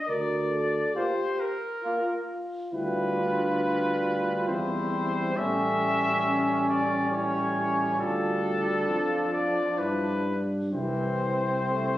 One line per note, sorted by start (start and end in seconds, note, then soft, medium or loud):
0.00 0.11 D#5 medium
0.07 0.81 D2 soft
0.07 0.51 A#4 soft
0.07 0.96 D5 medium
0.51 0.97 A4 soft
0.95 1.12 A#3 soft
0.95 1.11 F4 soft
0.95 1.56 G4 soft
0.95 1.42 C5 medium
1.40 2.29 A#4 soft
1.83 2.01 A#3 soft
1.83 2.73 F4 soft
1.83 2.00 F4 soft
2.72 4.50 D2 soft
2.72 8.90 G3 soft
2.72 3.16 E4 soft
2.72 4.50 F4 soft
2.72 4.45 B4 medium
3.16 4.50 D4 soft
4.48 5.37 E2 soft
4.48 5.36 C4 soft
4.48 5.36 E4 soft
4.48 5.39 C5 medium
5.36 7.96 A1 soft
5.36 6.23 A3 soft
5.36 8.01 C#4 soft
5.36 6.69 E5 medium
6.24 7.10 C#4 soft
6.70 7.12 D5 medium
7.12 7.98 E4 soft
7.12 7.98 C#5 medium
7.99 8.86 D2 soft
7.99 10.43 D4 soft
7.99 8.59 F4 soft
7.99 9.30 A4 medium
8.88 9.49 F2 soft
8.88 10.44 F3 soft
8.88 9.80 F4 soft
9.33 9.80 D5 medium
9.78 10.75 G2 soft
9.78 10.24 E4 soft
9.78 10.43 B4 soft
10.25 10.72 D4 soft
10.73 11.98 C2 soft
10.73 11.55 E3 soft
10.73 11.98 C4 soft
10.73 11.98 E4 soft
10.73 11.98 C5 soft
11.68 11.98 A3 soft